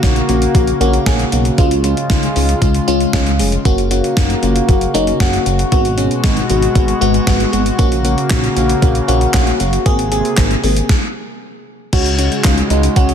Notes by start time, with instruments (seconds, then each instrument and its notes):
Already playing: analog synth pad C#3 A#3 F#4
0.03 analog synth bass A#1, fm electric piano A#3 C#4 F#4, kick, snare, closed hi-hat
0.16 closed hi-hat
0.29 analog synth bass A#1, fm electric piano A#3 C#4 F#4, closed hi-hat
0.42 closed hi-hat
0.55 analog synth bass A#1, fm electric piano A#3 C#4 F#4, kick, closed hi-hat
0.67 closed hi-hat
0.81 analog synth bass A#1, fm electric piano A#3 C#4 F#4, closed hi-hat
0.93 closed hi-hat
1.06 analog synth bass A#1, fm electric piano A#3 C#4 G#4, kick, snare, closed hi-hat
1.19 closed hi-hat
1.32 analog synth bass B1, fm electric piano A#3 C#4 F#4, closed hi-hat
1.45 closed hi-hat
1.58 analog synth bass C#2, fm electric piano G#3 C#4 F4, analog synth pad G#3 F4, kick, closed hi-hat
1.71 closed hi-hat
1.84 fm electric piano G#3 C#4 F4, closed hi-hat
1.97 closed hi-hat
2.10 analog synth bass C#2, fm electric piano G#3 C#4 F4, kick, snare, closed hi-hat
2.23 closed hi-hat
2.36 analog synth bass C#2, fm electric piano G#3 C#4 D#4, open hi-hat
2.49 closed hi-hat
2.62 analog synth bass C#2, fm electric piano G#3 C#4 F4, kick, closed hi-hat
2.74 closed hi-hat
2.88 analog synth bass C#2, fm electric piano G#3 C#4 F4, closed hi-hat
3.00 closed hi-hat
3.13 analog synth bass C#2, fm electric piano G#3 C#4 F4, kick, snare, closed hi-hat
3.27 closed hi-hat
3.39 analog synth bass F1, fm electric piano G#3 C#4 G#4, open hi-hat
3.52 closed hi-hat
3.65 analog synth bass F#1, fm electric piano A#3 C#4 F#4, analog synth pad A#3 F#4, kick, closed hi-hat
3.78 closed hi-hat
3.91 fm electric piano A#3 C#4 F#4, closed hi-hat
4.04 closed hi-hat
4.17 analog synth bass F#1, fm electric piano A#3 C#4 F#4, kick, snare, closed hi-hat
4.30 closed hi-hat
4.43 analog synth bass F#1, fm electric piano A#3 C#4 F4, closed hi-hat
4.56 closed hi-hat
4.68 analog synth bass F#1, fm electric piano A#3 C#4 F#4, kick, closed hi-hat
4.81 closed hi-hat
4.94 analog synth bass F#1, fm electric piano A#3 C#4 D#4, closed hi-hat
5.07 closed hi-hat
5.20 analog synth bass F#1, fm electric piano A#3 C#4 F#4, kick, snare, closed hi-hat
5.33 closed hi-hat
5.46 analog synth bass F#1, fm electric piano A#3 C#4 F#4, closed hi-hat
5.59 closed hi-hat
5.72 analog synth bass G#1, analog synth pad B2 G#3, fm electric piano G#3 B3 F#4, kick, closed hi-hat
5.85 closed hi-hat
5.98 fm electric piano G#3 B3 C#4, closed hi-hat
6.11 closed hi-hat
6.24 analog synth bass G#1, fm electric piano G#3 B3 D#4, kick, snare, closed hi-hat
6.37 closed hi-hat
6.50 analog synth bass G#1, fm electric piano G#3 B3 F#4, closed hi-hat
6.62 closed hi-hat
6.75 analog synth bass G#1, fm electric piano G#3 B3 F#4, kick, closed hi-hat
6.88 closed hi-hat
7.01 analog synth bass G#1, fm electric piano G#3 B3 F#4, closed hi-hat
7.14 closed hi-hat
7.27 analog synth bass G#1, fm electric piano G#3 B3 F#4, kick, snare, closed hi-hat
7.40 closed hi-hat
7.53 analog synth bass G#1, fm electric piano G#3 B3 F#4, closed hi-hat
7.66 closed hi-hat
7.78 analog synth bass A#1, analog synth pad C#3 A#3, fm electric piano A#3 C#4 F#4, kick, closed hi-hat
7.92 closed hi-hat
8.05 fm electric piano A#3 C#4 F#4, closed hi-hat
8.18 closed hi-hat
8.30 analog synth bass A#1, fm electric piano A#3 C#4 F#4, kick, snare, clap, closed hi-hat
8.44 closed hi-hat
8.56 analog synth bass A#1, fm electric piano A#3 C#4 F#4, closed hi-hat
8.69 closed hi-hat
8.82 analog synth bass A#1, fm electric piano A#3 C#4 F#4, kick, closed hi-hat
8.95 closed hi-hat
9.08 analog synth bass A#1, fm electric piano A#3 C#4 F#4, closed hi-hat
9.21 closed hi-hat
9.34 analog synth bass A#1, fm electric piano A#3 C#4 F#4, kick, snare, clap, closed hi-hat
9.47 closed hi-hat
9.60 analog synth bass F#1, fm electric piano A#3 C#4 F#4, closed hi-hat
9.73 closed hi-hat
9.86 analog synth bass G#1, analog synth pad C3 G#4, fm electric piano A#3 C4 G#4, kick, closed hi-hat
9.99 closed hi-hat
10.12 fm electric piano A#3 C4 G#4, closed hi-hat
10.25 closed hi-hat
10.37 analog synth bass G#1, fm electric piano A#3 C4 G#4, kick, snare, clap, closed hi-hat
10.51 closed hi-hat
10.64 analog synth bass G#1, fm electric piano A#3 C4 G#4, open hi-hat
10.76 closed hi-hat
10.89 kick, snare
11.93 analog synth bass C#2, analog synth pad C#3 G#3 F#4, fm electric piano G#3 C#4 F#4, kick, closed hi-hat, crash
12.06 closed hi-hat
12.19 fm electric piano G#3 C#4 F#4, closed hi-hat
12.32 closed hi-hat
12.44 analog synth bass C#2, fm electric piano G#3 C#4 F4, kick, snare, clap, closed hi-hat
12.58 closed hi-hat
12.70 analog synth bass C#2, fm electric piano G#3 C#4 D#4, closed hi-hat
12.83 closed hi-hat
12.96 analog synth bass C#2, fm electric piano G#3 C#4 F#4, kick, closed hi-hat
13.09 closed hi-hat